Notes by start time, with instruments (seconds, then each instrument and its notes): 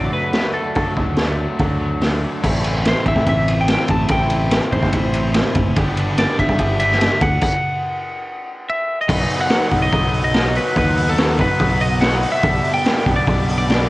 Already playing: overdriven electric guitar D3 F#3 A3 D4 F#4, clean electric guitar D5
0.13 overdriven electric guitar F#3, clean electric guitar B4
0.33 overdriven electric guitar A3, snare, open hi-hat
0.54 overdriven electric guitar D4, clean electric guitar A4
0.75 fingered electric bass D3, overdriven electric guitar D3 F#3 A3, kick, open hi-hat
0.79 overdriven electric guitar D4 F#4
0.97 fingered electric bass D2, kick
1.16 overdriven electric guitar A3, snare, open hi-hat
1.37 overdriven electric guitar F#3
1.59 fingered electric bass D2, overdriven electric guitar D3 F#3 A3 D4 F#4, kick, open hi-hat
1.80 overdriven electric guitar F#3
2.01 overdriven electric guitar A3, snare, open hi-hat
2.22 overdriven electric guitar D4
2.42 fingered electric bass A1, overdriven electric guitar A2 E3 A3 C4 E4 A4, kick, crash
2.64 ride
2.85 clean electric guitar C5, snare, ride
3.05 fingered electric bass A1, overdriven electric guitar E3 C4 E4, clean electric guitar E5, kick, ride
3.16 fingered electric bass A2, kick, snare
3.26 fingered electric bass A1, clean electric guitar E5, kick, ride
3.48 ride
3.61 clean electric guitar G5
3.68 clean electric guitar G5, snare, ride
3.88 fingered electric bass A1, clean electric guitar A5, kick, ride
4.08 fingered electric bass A1, overdriven electric guitar A2 E3 A3 C4 E4 A4, clean electric guitar G5, kick, ride
4.30 ride
4.51 snare, ride
4.71 fingered electric bass A1, overdriven electric guitar E3 C4 E4, clean electric guitar C5, kick, ride
4.82 fingered electric bass G1, kick, snare
4.92 fingered electric bass A1, kick, ride
5.13 ride
5.34 snare, ride
5.55 fingered electric bass F#1, kick, ride
5.76 fingered electric bass G1, overdriven electric guitar G2 D3 G3 B3 D4 G4, transistor combo organ E3 B3 G4 D5, kick, ride
5.97 ride
6.18 clean electric guitar D5, snare, ride
6.37 fingered electric bass G1, overdriven electric guitar B3 D4 G4, clean electric guitar E5, kick, ride
6.49 fingered electric bass G2, kick, snare
6.59 fingered electric bass G1, kick, ride
6.80 clean electric guitar E5, ride
6.92 snare
7.01 snare, ride
7.20 fingered electric bass D2, transistor combo organ F#3 C4 A4, clean electric guitar F#5, kick, ride
7.41 clean electric guitar F#5, kick, crash
8.70 clean electric guitar E5
9.01 clean electric guitar D#5
9.09 fingered electric bass B1, overdriven electric guitar B2 F#3 B3 D#4, transistor combo organ B3 D#4 F#4 D#5, kick, crash
9.30 open hi-hat
9.41 clean electric guitar F#5
9.50 overdriven electric guitar B2 F#3 B3 D#4, snare, open hi-hat
9.71 fingered electric bass B1, overdriven electric guitar B2 F#3 B3 D#4, kick, open hi-hat
9.82 clean electric guitar D#5
9.92 fingered electric bass B1, overdriven electric guitar B2 F#3 B3 D#4, kick, open hi-hat
10.14 open hi-hat
10.24 clean electric guitar D#5
10.33 overdriven electric guitar B2 F#3 B3 D#4, snare, open hi-hat
10.55 overdriven electric guitar B2 F#3 B3 D#4, clean electric guitar B4, open hi-hat
10.76 fingered electric bass D#2, overdriven electric guitar B2 F#3 B3 D#4, clean electric guitar B4, kick, open hi-hat
10.97 open hi-hat
11.09 clean electric guitar A4
11.18 overdriven electric guitar B2 F#3 B3 D#4, snare, open hi-hat
11.38 fingered electric bass B1, overdriven electric guitar B2 F#3 B3 D#4, clean electric guitar B4, kick, open hi-hat
11.58 fingered electric bass B1, overdriven electric guitar B2 F#3 B3 D#4, kick, open hi-hat
11.81 clean electric guitar D#5, open hi-hat
12.00 overdriven electric guitar B2 F#3 B3 D#4, clean electric guitar F#5, snare, open hi-hat
12.23 overdriven electric guitar B2 F#3 B3 D#4, open hi-hat
12.32 clean electric guitar E5
12.42 fingered electric bass B1, overdriven electric guitar B2 G3 B3 D4, transistor combo organ E4 G4 D5, kick, open hi-hat
12.64 open hi-hat
12.74 clean electric guitar G5
12.85 overdriven electric guitar B2 G3 B3 D4, snare, open hi-hat
13.04 fingered electric bass B1, overdriven electric guitar B2 G3 B3 D4, kick, open hi-hat
13.16 clean electric guitar D5
13.24 fingered electric bass B1, overdriven electric guitar B2 G3 B3 D4, kick, open hi-hat
13.49 open hi-hat
13.58 clean electric guitar D5
13.67 overdriven electric guitar B2 G3 B3 D4, snare, open hi-hat